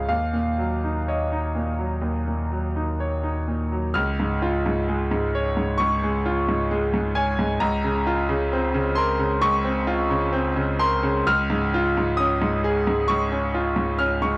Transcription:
Already playing: C#2 G#2 G#3 F4 C#5 F5 G#5
0.08 D#2 F5
0.33 A#2
0.58 F#3
0.84 D#4
1.08 C#5 D#5
1.32 D#4
1.55 A#2
1.79 F#3
2.02 D#2
2.27 A#2
2.52 F#3
2.76 D#4
3.00 C#5
3.23 D#4
3.48 A#2
3.72 F#3
3.94 C#2 F6
4.20 G#2
4.42 F4
4.66 G#2
4.89 G#3
5.11 G#2
5.35 C#5
5.57 G#2
5.78 C#2 C#6
6.03 G#3
6.26 F4
6.49 G#2
6.71 G#3
6.94 G#2
7.15 C#5 G#5
7.39 G#2
7.60 C#2 A#5
7.84 C#3
8.07 F4
8.29 C#3
8.53 C4
8.74 C#3
8.95 A#4 C6
9.19 C#3
9.41 C#2 C#6
9.65 C4
9.87 F4
10.10 C#3
10.33 C4
10.56 C#3
10.79 A#4 C6
11.03 C#3
11.27 C#2 F6
11.50 G#2
11.74 F4
11.97 G#2
12.17 C#4 D#6
12.42 G#2
12.64 G#4
12.87 G#2
13.08 C#2 C#6
13.32 C#4
13.54 F4
13.76 G#2
13.99 C#4 F6
14.22 G#2 C#6

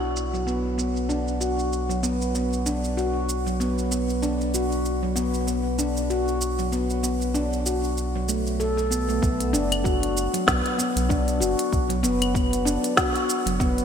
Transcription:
Already playing: B1
0.16 shaker
0.34 F#3, shaker
0.47 B3, shaker
0.78 B3, shaker
0.97 shaker
1.09 D4, shaker
1.28 shaker
1.41 F#4, shaker
1.59 shaker
1.73 shaker
1.89 F#3, shaker
2.03 B3, shaker
2.22 shaker
2.35 B3, shaker
2.53 shaker
2.66 D4, shaker
2.84 shaker
2.97 F#4, shaker
3.29 shaker
3.47 F#3, shaker
3.60 B3, shaker
3.79 shaker
3.91 B3, shaker
4.10 shaker
4.22 D4, shaker
4.41 shaker
4.54 F#4, shaker
4.72 shaker
4.85 shaker
5.03 F#3
5.16 B3, shaker
5.34 shaker
5.47 B3, shaker
5.79 D4, shaker
5.97 shaker
6.10 F#4, shaker
6.28 shaker
6.41 shaker
6.59 F#3, shaker
6.72 B3, shaker
6.90 shaker
7.03 B3, shaker
7.22 shaker
7.34 D4, shaker
7.53 shaker
7.66 F#4, shaker
7.84 shaker
7.98 shaker
8.15 F#3
8.28 A3, shaker
8.47 shaker
8.60 A4, shaker
8.77 A4, shaker
8.91 B3, shaker
9.08 A3, shaker
9.22 B1 B3, kick, shaker
9.40 closed hi-hat, shaker
9.53 F#1 D4, shaker
9.72 closed hi-hat, claves, shaker
9.84 F#4, kick, shaker
10.03 closed hi-hat
10.17 shaker
10.34 F#3, closed hi-hat, shaker
10.47 B1 B3, kick, snare, shaker
10.66 closed hi-hat
10.78 B3, shaker
10.96 B1, closed hi-hat, shaker
11.09 D4, kick, shaker
11.28 closed hi-hat, shaker
11.40 F#1 F#4, shaker
11.59 closed hi-hat, shaker
11.73 B1, kick, shaker
11.90 F#3, closed hi-hat, shaker
12.03 F#1 B3, shaker
12.22 closed hi-hat, claves, shaker
12.34 B3, kick, shaker
12.53 closed hi-hat, shaker
12.65 D4, shaker
12.84 closed hi-hat, shaker
12.97 F#4, kick, snare, shaker
13.16 closed hi-hat, shaker
13.29 shaker
13.46 F#1 F#3, closed hi-hat, shaker
13.60 B3, kick, shaker
13.78 closed hi-hat, shaker

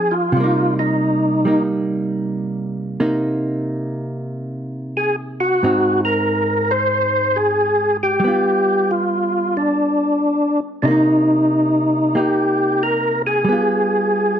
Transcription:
Already playing: F3 C4 D#4 G#4
0.11 F4
0.32 C3
0.37 G3 A#3
0.44 D#4
0.79 D#4
1.45 G3 A#3 D#4
3.00 C3 A#3 D#4
4.97 G#4
5.40 F#4
5.63 G#2 C4 D#4
6.05 A#4
6.71 C5
7.36 G#4
8.03 G4
8.20 G3
8.24 B3 F4
8.91 F4
9.57 D4
10.82 C3 D4 D#4
10.87 A#3 D#4
12.15 A#3 D#4 G4
12.83 A#4
13.27 G#4
13.45 G3
13.49 B3 F4

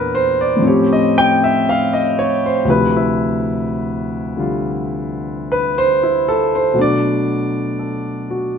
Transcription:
Already playing: E2 A#2 D4 G4 A#4 B4
0.15 C5
0.41 D5
0.57 A2 F3
0.62 C4 C#4
0.67 G4 C#5
0.93 D#5
1.18 G5
1.44 E5
1.69 F5
1.93 D#5
2.19 C#5
2.46 C5
2.65 D2 C3 F3
2.70 E4 B4
2.97 E4
4.37 D3 G3 F4
5.52 B4
5.78 C5
6.03 E4
6.29 A4
6.55 C5
6.74 B2 F#3 A3
6.79 D4 D5
7.79 A4
8.30 F#4

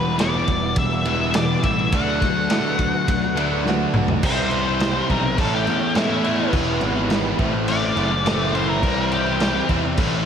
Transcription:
Already playing: E1 E2 B2 E3 G3 B3 E4 G4 B4
0.19 E2 B2 E3 G3 B3 E4 D5, snare, ride
0.34 E3 G3 B3 E4
0.47 E1 E2 B2 E3 G3, kick, ride
0.63 E3 G3 B3 E4
0.76 E1 E2 B2 E3 G3 E5, kick, ride
0.91 E3 G3 B3 E4
1.05 E2 B2 E3 G3 B3 E4 E5, ride
1.34 E2 B2 E3 G3 B3 E4 D5, snare, ride
1.63 A1 E2 B2 E3 G3 B3 E4 E5, kick, ride
1.77 E3 G3 B3 E4
1.92 D2 D3 F#3 A3 B3 D4 F#4 A4 B4 F#5, kick, ride
2.21 D2 D3 F#3 A3 B3 F#4, kick, snare, ride
2.50 D3 F#3 A3 B3 D4 F#4, snare, ride
2.64 A3 B3 F#4
2.79 D2 D3 F#3 A3, kick, ride
2.94 A3 B3 F#4
3.07 D2 D3 F#3 A3, kick, ride
3.22 A3 B3 F#4
3.36 D3 F#3 A3 B3 D4 F#4, ride
3.64 D3 F#3 A3 B3 D4 F#4, snare
3.94 B1 D3 F#3 A3 B3 F#4, mid tom
4.00 C4 D4
4.05 E4 F4, floor tom
4.09 A3 B3 F#4 G4 A4
4.16 B4 C5
4.22 C2 C3 E3 G3 C4 C#4 E4 F4 G#4 C#5 D5, kick, crash
4.26 C5
4.43 C4 E4 G4 C5
4.51 E3 G3 C4 E4, crash
4.66 G3 C4 E4
4.80 C3 E3 G3 C4 E4, snare, crash
4.95 G3 C4 E4
5.09 B1 C3 E3 G3 C4 E4 A#4, kick, crash
5.23 C4 E4, muted overdriven electric guitar stroke, muted distorted electric guitar stroke
5.27 G3
5.38 A1 A2 E3 A3 C#4 E4 A4 C#5, kick, crash
5.54 A3 C#4 E4 G4
5.67 E2 E3 A3 C#4 E4, crash
5.81 muted overdriven electric guitar stroke, muted distorted electric guitar stroke
5.95 A2 E3 A3 C#4 E4, snare, crash
6.23 E3 A3 C#4 E4, crash
6.27 A2
6.39 A3 C#4 E4
6.53 E1 E2 B2 E3 G3 B3 E4 G4 B4, kick, crash
6.81 G#1 E3 G3 B3 E4, crash
6.95 E3 G3 B3 E4
7.10 E2 B2 E3 G3 B3 E4, snare, crash
7.24 E3 G3 B3 E4
7.37 A1 A2 E3 A3 C4 A4, kick, crash
7.41 C4 E4 C5
7.53 C4 E4, muted distorted electric guitar stroke, muted overdriven electric guitar stroke
7.57 A3
7.68 E3 A3 C4 E4 D5, crash
7.81 A3 C4 E4
7.96 F#1 E3 A3 C4 E4, crash
8.11 muted distorted electric guitar stroke, muted overdriven electric guitar stroke
8.26 A2 E3 A3 C4 E4, snare, crash
8.53 E3 A3 C4 E4 C5, crash
8.69 A3 C4 E4 A#4
8.83 C2 C3 E3 G3 C4 E4 G4 C5, kick, crash
9.11 E3 G3 C4 E4 G4, crash
9.25 G3 C4 E4
9.40 C3 E3 G3 C4 E4, snare, crash
9.54 G3 C4 E4
9.69 E2 C3 E3 G3 C4 E4, kick, crash
9.83 G3 C4 E4, muted distorted electric guitar stroke, muted overdriven electric guitar stroke
9.97 A1 A2 E3 A3 C#4 E4 A4 C#5, kick, crash
10.01 C#4 E4
10.13 A3 C#4 E4

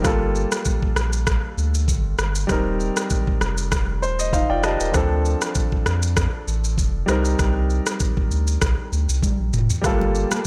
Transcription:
0.02 G1 G3 A#3 F4, kick, cross-stick, shaker
0.07 A4
0.35 shaker
0.52 cross-stick, shaker
0.65 kick, shaker
0.82 kick
0.96 A#1, cross-stick, shaker
1.13 shaker
1.27 kick, cross-stick, shaker
1.57 D2, shaker
1.74 shaker
1.88 G1, kick, shaker
2.18 G1, cross-stick, shaker
2.35 shaker
2.47 D#1 G3 C4 D#4, kick, cross-stick, shaker
2.52 A#4
2.80 shaker
2.97 cross-stick, shaker
3.10 kick, shaker
3.27 kick
3.41 F1, cross-stick, shaker
3.58 shaker
3.72 kick, cross-stick, shaker
4.02 D#1 C5, shaker
4.19 D#5, shaker
4.33 D#4 C5 F5, kick, shaker
4.50 F1 F4 D5 G5
4.63 G4 D#5 A5, cross-stick, shaker
4.80 D#1 A#4 G5, shaker
4.92 D2 F3 C4 D4, kick, cross-stick, shaker
4.97 A4
5.25 shaker
5.41 cross-stick, shaker
5.55 kick, shaker
5.72 kick
5.86 F2, cross-stick, shaker
6.02 shaker
6.17 kick, cross-stick, shaker
6.47 A1, shaker
6.64 shaker
6.78 F1, kick, shaker
7.06 C2 G3 C4 D#4, cross-stick, shaker
7.11 A#4
7.25 shaker
7.39 C2, kick, cross-stick, shaker
7.70 shaker
7.86 cross-stick, shaker
8.00 kick, shaker
8.17 kick
8.31 D2, shaker
8.47 shaker
8.62 C2, kick, cross-stick, shaker
8.92 D2, shaker
9.09 C2, shaker
9.23 kick, high tom, shaker
9.39 A#1
9.53 F1, mid tom, shaker
9.70 floor tom, shaker
9.81 G1 G3 A3 F4 F5 G5 A5, kick, cross-stick, shaker
9.86 A#3 A4
10.01 high conga
10.15 shaker
10.31 cross-stick, high conga, shaker

